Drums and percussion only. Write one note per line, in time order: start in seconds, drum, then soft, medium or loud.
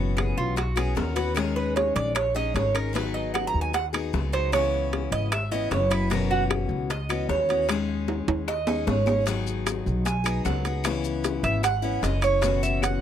0.17 high bongo medium
0.17 high timbale medium
0.17 claves medium
0.38 high bongo soft
0.57 high bongo medium
0.57 high timbale medium
0.77 high timbale medium
0.77 claves medium
0.97 high bongo medium
0.97 low bongo medium
0.97 low timbale medium
1.17 high bongo soft
1.17 high timbale medium
1.36 high bongo medium
1.36 high timbale medium
1.36 claves medium
1.57 high bongo soft
1.77 high bongo medium
1.77 high timbale medium
1.96 high timbale medium
2.15 high bongo medium
2.15 high timbale medium
2.15 claves medium
2.37 high bongo soft
2.56 high bongo medium
2.56 low bongo medium
2.56 high timbale medium
2.75 high bongo soft
2.75 high timbale medium
2.75 claves medium
2.96 high bongo medium
2.96 high timbale medium
3.16 high bongo soft
3.35 high bongo medium
3.35 high timbale medium
3.35 claves medium
3.55 high bongo soft
3.74 high bongo medium
3.74 high timbale medium
3.94 high timbale medium
3.94 claves medium
4.14 high bongo medium
4.14 low bongo medium
4.34 high bongo soft
4.34 high timbale medium
4.53 high bongo medium
4.53 high timbale medium
4.53 claves medium
4.74 high bongo soft
4.93 high bongo medium
4.93 high timbale medium
5.12 high timbale medium
5.32 high bongo medium
5.32 high timbale loud
5.32 claves medium
5.53 high bongo soft
5.72 high bongo medium
5.72 low bongo medium
5.72 high timbale medium
5.92 high bongo soft
5.92 high timbale medium
5.92 claves medium
6.11 high bongo medium
6.11 high timbale medium
6.32 high bongo soft
6.50 high bongo medium
6.50 high timbale medium
6.50 claves medium
6.71 high bongo soft
6.90 high bongo medium
6.90 high timbale medium
7.10 high timbale medium
7.10 claves medium
7.29 high bongo medium
7.29 low bongo medium
7.49 high bongo soft
7.49 high timbale medium
7.69 high bongo medium
7.69 high timbale medium
7.69 claves medium
7.89 high bongo soft
8.08 high bongo medium
8.08 high timbale medium
8.28 high timbale medium
8.48 high bongo medium
8.48 claves medium
8.67 low timbale medium
8.87 high bongo medium
8.87 low bongo medium
8.87 low timbale medium
9.07 high bongo soft
9.07 low timbale medium
9.07 claves medium
9.27 high bongo medium
9.27 high timbale medium
9.27 maracas medium
9.47 high bongo soft
9.47 maracas medium
9.66 high bongo medium
9.66 high timbale medium
9.66 claves medium
9.66 maracas medium
9.86 high bongo soft
9.86 maracas soft
10.06 high bongo medium
10.06 high timbale medium
10.06 maracas medium
10.26 high timbale medium
10.26 claves medium
10.26 maracas medium
10.45 high bongo medium
10.45 low bongo medium
10.45 maracas medium
10.65 high bongo soft
10.65 high timbale medium
10.65 maracas soft
10.84 high bongo medium
10.84 high timbale medium
10.84 claves medium
10.84 maracas medium
11.04 high bongo soft
11.04 maracas medium
11.24 high bongo medium
11.24 high timbale medium
11.24 maracas medium
11.44 high timbale medium
11.44 maracas soft
11.64 high bongo medium
11.64 high timbale medium
11.64 claves medium
11.64 maracas medium
11.83 high bongo soft
12.03 high bongo medium
12.03 low bongo medium
12.03 high timbale medium
12.03 maracas medium
12.22 high bongo soft
12.22 high timbale medium
12.22 claves medium
12.22 maracas soft
12.42 high bongo medium
12.42 high timbale medium
12.42 maracas medium
12.62 high bongo soft
12.62 maracas medium
12.82 high bongo medium
12.82 high timbale medium
12.82 claves medium
12.82 maracas medium